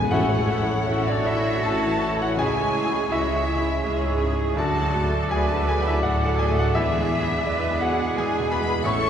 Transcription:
Already playing: grand piano B3 G#4 B4 G#5, flute G#5
0.01 timpani E2
0.10 double bass section A1, timpani A2, grand piano A2 F#4 F#5, french horn section E3 C#4, bassoon A3, viola section C#4 A4, clarinet E4, oboe C#5, violin section E5 F#5, flute F#5
0.29 viola section E4 C#5, violin section C#5
0.39 grand piano A3
0.50 viola section C#4 A4, violin section E5
0.62 grand piano E4
0.68 viola section E4 C#5, violin section C#5
0.86 double bass section A1, viola section C#4 A4, cello section F#4, grand piano C#5, violin section E5
1.04 viola section E4 C#5, violin section C#5 D5
1.09 grand piano D4 A4 D5, flute D5
1.23 viola section C#4 A4, grand piano E4 E5, violin section E5, flute E5
1.37 grand piano E4
1.41 viola section E4 C#5, violin section C#5
1.59 grand piano A3, violin section E5 A5
1.64 double bass section A1, viola section C#4 A4, grand piano A4 A5, flute A5
1.81 viola section E4 C#5, violin section C#5
1.87 grand piano E3
2.01 viola section C#4 A4, violin section E5
2.12 grand piano A3
2.19 viola section E4 C#5, grand piano F#4 F#5, violin section C#5 F#5, flute F#5
2.36 grand piano C#2 G#4 G#5, double bass section C#2, french horn section E3 C#4, bassoon G#3, viola section C#4 G#4, cello section E4, violin section E5 G#5, flute G#5
2.56 viola section E4, violin section C#5
2.62 grand piano G#3
2.74 viola section C#4 G#4, cello section G#4, violin section E5
2.86 grand piano E4
2.93 viola section E4, violin section C#5
3.11 double bass section C#2, viola section C#4 G#4, grand piano E4 E5, cello section F#4, violin section E5, flute E5
3.29 viola section E4, violin section C#5
3.36 grand piano G#4
3.48 viola section C#4 G#4, cello section E4, violin section E5
3.59 grand piano E4
3.67 viola section E4, violin section C#5
3.84 double bass section C#2, grand piano G#3, viola section C#4 G#4, cello section G#4, violin section E5
4.02 viola section E4, violin section C#5
4.08 grand piano G#2
4.20 viola section C#4 G#4, violin section E5
4.33 grand piano G#3, violin section C#5
4.40 viola section E4
4.54 double bass section D2, grand piano D2, french horn section F#3 D4, bassoon A3, viola section A3 F#4, clarinet F#4, cello section F#4, violin section D5 A5, oboe D5
4.59 grand piano A4 A5, flute A5
4.71 violin section A4
4.75 viola section D4 A4
4.79 grand piano F#3
4.91 viola section A3 F#4, cello section A4, violin section D5
5.02 grand piano F#4
5.10 viola section D4 A4, violin section A4
5.29 double bass section D2, viola section A3 F#4, grand piano G#4 D5 G#5, cello section B4, violin section D5 G#5, flute G#5
5.47 viola section D4 A4, violin section A4 A5, grand piano A5, flute A5
5.52 grand piano F#4 A4
5.67 viola section A3 F#4, grand piano G#4 G#5, violin section D5 G#5, flute G#5
5.77 grand piano F#3
5.84 viola section D4 A4, violin section A4 E5, flute E5, grand piano E5
5.89 grand piano E4
6.01 double bass section D2, grand piano A2 F#4 F#5, viola section A3 F#4, violin section D5 F#5, flute F#5
6.05 cello section A4
6.21 viola section D4 A4, violin section A4
6.26 grand piano F#3
6.38 viola section A3 F#4, grand piano G#4 G#5, violin section D5 G#5, flute G#5
6.51 grand piano A2, violin section F#5, flute F#5
6.56 viola section D4 A4, grand piano F#4 F#5, violin section A4
6.73 double bass section E2, grand piano E2 E4 E5, french horn section G#3 D4, viola section B3 E4, clarinet E4, cello section G#4, violin section B4 E5, flute E5
6.90 viola section D4, violin section G#4
6.97 grand piano G#3
7.07 viola section B3 E4
7.11 violin section B4
7.23 viola section D4, grand piano E4
7.27 violin section G#4
7.43 double bass section E2, bassoon G#3, viola section B3 E4, cello section B4, violin section B4, grand piano D5
7.61 viola section D4, violin section G#4
7.71 grand piano G#4
7.78 viola section B3 E4, grand piano F#4 F#5, violin section B4 F#5
7.82 cello section G#4, flute F#5
7.93 viola section D4, grand piano E4
8.01 violin section G#4
8.13 double bass section E2, grand piano G#3, viola section B3 E4, violin section B4, flute G#5
8.17 grand piano G#4 G#5, violin section G#5
8.30 viola section D4
8.37 grand piano B2, violin section G#4
8.47 viola section B3 E4, violin section B4
8.51 grand piano B4 B5, flute B5, violin section B5
8.61 grand piano G#3, viola section D4
8.70 violin section G#4
8.82 double bass section A1, grand piano A2 C#5 C#6, timpani A2, viola section A3 E4, french horn section A3 C#4, bassoon A3, cello section A4, violin section C#5 C#6, oboe C#5, flute C#6
9.00 viola section C#4, violin section A4
9.05 grand piano A3

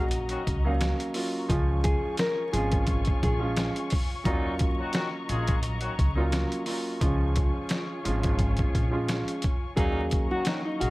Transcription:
Already playing: upright bass A#1, grand piano F#3 A#3 C#4 F5, string section F#3 D#5 A#5 C#6, nylon-string guitar F#4
0.11 closed hi-hat
0.29 horn section D#3 C#4 F#4, closed hi-hat
0.47 upright bass C#2, kick, closed hi-hat
0.64 horn section A#2 F#3 D#4, grand piano F#3 A#3 C#4 F5
0.81 snare, closed hi-hat
1.00 closed hi-hat
1.14 grand piano F#3 A#3 C#4 F4, open hi-hat
1.48 upright bass C#2, grand piano F3 G#3 C#4 F4, string section F4 C#5 G#5, kick, closed hi-hat
1.84 nylon-string guitar G#4, kick, closed hi-hat
2.17 nylon-string guitar A#4, snare, closed hi-hat
2.52 upright bass G#1, grand piano F3 G#3 C#4 F4, nylon-string guitar G#4, closed hi-hat
2.72 kick, closed hi-hat
2.87 kick, closed hi-hat
3.05 kick, closed hi-hat
3.23 upright bass A#1, nylon-string guitar G#4, kick, closed hi-hat
3.39 grand piano F3 G#3 C#4 F4
3.56 snare, closed hi-hat
3.76 closed hi-hat
3.90 kick, open hi-hat
4.24 upright bass D#2, horn section A#2 F#3 D#4, grand piano F#3 A#3 C#4 F4, string section F#3 D#5 A#5, kick, closed hi-hat
4.59 kick, closed hi-hat
4.79 horn section D#3 C#4 F#4
4.93 horn section D#3 C#4 F#4, snare, closed hi-hat
5.29 upright bass A#1, horn section G#3 F4 G#4, closed hi-hat
5.47 kick, closed hi-hat
5.63 closed hi-hat
5.81 horn section D#3 C#4 F#4, closed hi-hat
5.99 upright bass C#2, kick, closed hi-hat
6.16 horn section A#2 F#3 D#4, grand piano F#3 A#3 C#4 F4
6.32 snare, closed hi-hat
6.52 closed hi-hat
6.66 grand piano F#3 A#3 C#4 F4, open hi-hat
7.00 upright bass C#2, grand piano F3 G#3 C#4 F4, string section F4 C#5 G#5, kick, closed hi-hat
7.36 kick, closed hi-hat
7.69 snare, closed hi-hat
8.04 upright bass G#1, grand piano F3 G#3 C#4 F4, closed hi-hat
8.23 kick, closed hi-hat
8.39 kick, closed hi-hat
8.57 kick, closed hi-hat
8.75 upright bass A#1, kick, closed hi-hat
8.91 grand piano F3 G#3 C#4 F4
9.08 snare, closed hi-hat
9.28 closed hi-hat
9.42 kick, closed hi-hat
9.76 upright bass D#2, horn section A#2 F#3 D#4, grand piano F#3 A#3 C#4 F5, string section F#3 D#5 A#5 C#6, nylon-string guitar G#4, kick, closed hi-hat
10.11 kick, closed hi-hat
10.31 horn section D#3 C#4 F#4, nylon-string guitar F#4
10.45 horn section D#3 C#4 F#4, nylon-string guitar D#4, snare, closed hi-hat
10.65 nylon-string guitar D#4
10.80 upright bass A#1, horn section G#3 G#4 F5, nylon-string guitar F#4, closed hi-hat

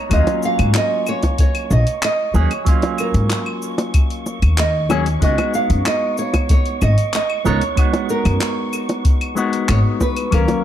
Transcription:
Already playing: nylon-string guitar C#5, synth texture A#5
0.09 upright bass D#2, clean electric guitar F#3 A#3 C#4 F4, nylon-string guitar D#5, synth texture C#6, kick, open hi-hat, cabasa, claves
0.27 open hi-hat, high bongo, cabasa
0.43 nylon-string guitar F5, cabasa
0.59 upright bass G#2, open hi-hat, cabasa, claves
0.74 nylon-string guitar D#5, clap, open hi-hat, high bongo, cabasa
1.07 nylon-string guitar C#5, cabasa, claves
1.23 kick, open hi-hat, high bongo, cabasa
1.38 nylon-string guitar C#5, kick, open hi-hat, cabasa
1.55 open hi-hat, claves
1.70 upright bass A#1, nylon-string guitar D#5, high bongo, cabasa
1.87 open hi-hat, cabasa
2.02 nylon-string guitar D#5, clap, open hi-hat, cabasa, claves
2.34 upright bass D#2, clean electric guitar F#3 A#3 C#4 G#4, nylon-string guitar C#5, high bongo, cabasa
2.51 open hi-hat, cabasa, claves
2.65 clean electric guitar F#3 A#3 C#4 F4, kick, open hi-hat, cabasa
2.82 open hi-hat, high bongo, cabasa
2.98 nylon-string guitar A#4, cabasa, claves
3.14 upright bass G#2, open hi-hat, cabasa
3.30 clap, open hi-hat, high bongo, cabasa
3.46 claves
3.62 cabasa
3.78 open hi-hat, high bongo, cabasa
3.94 kick, open hi-hat, cabasa, claves
4.10 open hi-hat
4.26 high bongo, cabasa
4.42 upright bass D#2, open hi-hat, cabasa, claves
4.58 nylon-string guitar D#5, clap, open hi-hat, cabasa
4.89 clean electric guitar F#3 A#3 C#4 G#4, nylon-string guitar C#5, high bongo, cabasa, claves
5.06 open hi-hat, cabasa
5.21 upright bass C#2, clean electric guitar G#3 B3 D#4 F#4, nylon-string guitar D#5, kick, open hi-hat, cabasa
5.38 open hi-hat, high bongo, cabasa, claves
5.54 nylon-string guitar F5, cabasa
5.70 upright bass F#2, open hi-hat, cabasa
5.86 nylon-string guitar D#5, clap, open hi-hat, high bongo, cabasa, claves
6.17 nylon-string guitar C#5, cabasa
6.34 kick, open hi-hat, high bongo, cabasa, claves
6.49 nylon-string guitar C#5, kick, open hi-hat, cabasa
6.66 open hi-hat
6.82 upright bass G#1, nylon-string guitar D#5, high bongo, cabasa, claves
6.98 open hi-hat, cabasa
7.14 nylon-string guitar D#5, clap, open hi-hat, cabasa
7.30 claves
7.44 upright bass C#2, clean electric guitar G#3 B3 D#4 A#4, nylon-string guitar C#5, high bongo, cabasa
7.61 open hi-hat, cabasa
7.76 clean electric guitar G#3 B3 D#4 F#4, kick, open hi-hat, cabasa, claves
7.93 open hi-hat, high bongo, cabasa
8.09 nylon-string guitar A#4, cabasa
8.25 upright bass F#2, open hi-hat, cabasa, claves
8.40 clap, open hi-hat, high bongo, cabasa
8.73 cabasa, claves
8.89 open hi-hat, high bongo, cabasa
9.05 kick, open hi-hat, cabasa
9.21 open hi-hat, claves
9.35 clean electric guitar G#3 B3 D#4 F#4, high bongo, cabasa
9.53 open hi-hat, cabasa
9.69 upright bass G#1, nylon-string guitar C#5, clap, open hi-hat, cabasa, claves
10.01 nylon-string guitar B4, kick, high bongo, cabasa
10.16 open hi-hat, cabasa, claves
10.31 upright bass D#2, clean electric guitar F#3 A#3 C#4 F5, nylon-string guitar A#4, kick, open hi-hat, cabasa, claves
10.48 open hi-hat, high bongo, cabasa

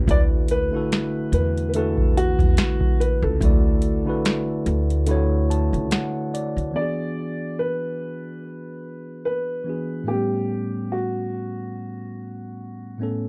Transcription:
0.06 upright bass D2, tine electric piano D3 A3 E4 F#4, kick, closed hi-hat
0.11 tine electric piano B4, upright piano D5
0.48 upright piano B4, closed hi-hat
0.71 tine electric piano D3 A3 E4 F#4
0.77 tine electric piano A4
0.92 finger snap, snare, closed hi-hat
1.32 upright bass E2, upright piano B4, closed hi-hat
1.58 closed hi-hat
1.69 upright piano B4
1.73 tine electric piano D3 A3 E4, upright piano A4, closed hi-hat
1.77 tine electric piano F#4 B4
1.98 kick
2.17 upright piano F#4, closed hi-hat
2.39 upright bass E2, kick, closed hi-hat
2.57 finger snap, snare, closed hi-hat
2.81 kick
3.00 upright piano B4, closed hi-hat
3.22 upright bass C#2, upright piano A4
3.40 upright bass D2, tine electric piano D3 A3 E4 F#4, kick, closed hi-hat
3.45 tine electric piano D5
3.82 closed hi-hat
4.04 tine electric piano D3 A3 E4 F#4
4.09 tine electric piano B4
4.25 finger snap, snare, closed hi-hat
4.66 upright bass D2, closed hi-hat
4.90 closed hi-hat
5.06 tine electric piano D3 A3 E4 F#4, closed hi-hat
5.11 tine electric piano C#5
5.50 tine electric piano A5, closed hi-hat
5.73 upright bass C#2, closed hi-hat
5.91 tine electric piano F#5, finger snap, snare, closed hi-hat
6.34 tine electric piano D5, closed hi-hat
6.57 upright bass D2, closed hi-hat
6.71 tine electric piano E3 B3
6.76 tine electric piano D4 F#4, upright piano D5
6.81 tine electric piano G#4
7.59 upright piano B4
9.25 upright piano B4
9.64 tine electric piano E3 B3 D4 F#4
9.70 tine electric piano G#4
10.04 tine electric piano A2 A3
10.08 tine electric piano B3 C#4, upright piano G4
10.14 tine electric piano G3
10.92 upright piano F#4
12.98 tine electric piano A2 A3 B3 C#4
13.03 tine electric piano A4

